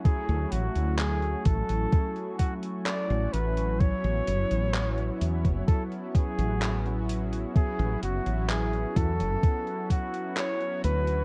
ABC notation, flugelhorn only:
X:1
M:4/4
L:1/8
Q:1/4=64
K:A
V:1 name="Flugelhorn"
G F G A2 F d B | c3 z A G2 z | G F G A2 F c B |]